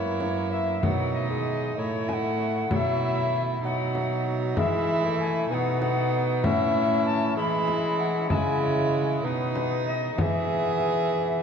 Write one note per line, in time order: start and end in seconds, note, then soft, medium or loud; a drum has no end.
0.00 0.82 F#2 medium
0.00 0.83 A#3 medium
0.00 0.81 E4 medium
0.00 0.50 C#5 medium
0.21 frame drum soft
0.51 0.84 E5 medium
0.83 1.75 B2 medium
0.83 1.29 F#3 medium
0.83 1.80 D#4 medium
0.83 1.12 F#5 medium
0.83 frame drum medium
1.13 1.75 D#5 medium
1.30 1.76 G#3 medium
1.77 2.69 A2 medium
1.77 2.72 A3 medium
1.77 2.70 E4 medium
1.77 2.10 C#5 medium
2.08 2.14 G#5 medium
2.08 frame drum soft
2.13 2.72 F#5 medium
2.71 3.62 B2 medium
2.71 3.36 F#3 medium
2.71 3.62 E4 medium
2.71 2.76 F#5 medium
2.71 frame drum medium
2.75 3.02 E5 medium
3.02 3.42 E5 medium
3.64 4.58 B2 medium
3.64 4.59 F#3 medium
3.64 4.59 D#4 medium
3.64 4.22 F#5 medium
3.95 frame drum soft
4.57 5.49 E3 medium
4.57 5.06 G#3 medium
4.57 5.51 E4 medium
4.57 5.15 E5 medium
4.57 frame drum medium
5.05 5.52 A3 medium
5.20 5.49 G#5 medium
5.49 6.44 B2 medium
5.49 6.46 B3 medium
5.49 6.46 D#4 medium
5.49 5.80 F#5 medium
5.49 5.54 G#5 medium
5.81 6.42 F#5 medium
5.81 frame drum soft
6.43 7.36 A2 medium
6.43 7.36 C#4 medium
6.43 7.37 E4 medium
6.43 7.04 E5 medium
6.43 frame drum medium
7.06 7.36 A5 medium
7.36 8.31 E3 medium
7.36 8.28 G#3 medium
7.36 8.28 E4 medium
7.36 7.97 B5 loud
7.68 frame drum soft
7.99 8.32 F#5 medium
8.30 9.24 C#3 medium
8.30 9.26 G#3 medium
8.30 9.26 E4 medium
8.30 8.35 A5 medium
8.30 frame drum medium
8.34 8.60 G#5 medium
8.61 9.22 C#5 medium
9.24 10.17 B2 medium
9.24 9.91 B3 medium
9.24 10.20 D#4 medium
9.24 9.85 B4 medium
9.56 frame drum soft
9.86 10.19 D#5 medium
10.17 11.43 E3 medium
10.17 11.43 B3 medium
10.17 11.43 G#4 medium
10.17 11.43 E5 medium
10.17 10.22 F#5 medium
10.17 frame drum medium